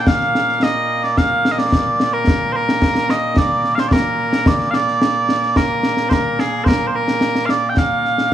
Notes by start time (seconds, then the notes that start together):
Already playing: A#2 A#3
0.07 F5, concert bass drum, snare
0.21 snare
0.35 snare
0.49 snare
0.63 D#5, snare
1.03 D5, snare
1.17 F5, concert bass drum, snare
1.45 snare
1.52 D#5
1.58 D5, snare
1.72 concert bass drum, snare
2.00 snare
2.13 A#4
2.27 concert bass drum, snare
2.52 A#4 C5
2.69 snare
2.82 concert bass drum, snare
2.95 snare
3.09 D#5, snare
3.36 D5, concert bass drum, snare
3.64 snare
3.75 F5, snare
3.79 C5
3.88 D5, concert bass drum, snare
3.93 A#4
4.33 snare
4.46 D5, concert bass drum, snare
4.60 snare
4.71 D5 F5, snare
4.88 snare
5.02 snare
5.29 snare
5.43 snare
5.56 A#4, concert bass drum, snare
5.83 snare
5.97 snare
6.09 A#4 C5, concert bass drum, snare
6.39 G#4, snare
6.64 A#4 C5, concert bass drum, snare
6.87 C5
6.95 A#4
7.08 snare
7.21 snare
7.35 snare
7.46 F5, snare
7.50 D5
7.69 G5
7.77 F5, concert bass drum, snare
8.05 snare
8.18 snare